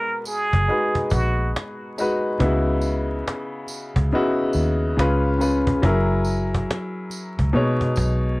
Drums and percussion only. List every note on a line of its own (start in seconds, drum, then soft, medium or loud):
0.24 cajon slap soft
0.24 tambourine medium
0.53 cajon bass medium
0.68 cajon slap soft
0.95 cajon bass medium
1.10 cajon bass loud
1.10 tambourine soft
1.56 cajon slap loud
1.96 cajon slap soft
1.96 tambourine medium
2.40 cajon bass loud
2.81 cajon slap soft
2.81 tambourine soft
3.28 cajon slap loud
3.67 cajon slap soft
3.67 tambourine medium
3.96 cajon bass loud
4.11 cajon slap soft
4.53 cajon slap soft
4.53 tambourine soft
4.99 cajon slap loud
5.39 cajon slap soft
5.39 tambourine medium
5.67 cajon bass loud
5.83 cajon bass loud
6.25 cajon slap soft
6.25 tambourine soft
6.54 cajon bass loud
6.71 cajon slap loud
7.10 cajon slap soft
7.10 tambourine medium
7.39 cajon bass loud
7.54 cajon slap soft
7.81 cajon bass medium
7.96 cajon bass medium
7.96 tambourine soft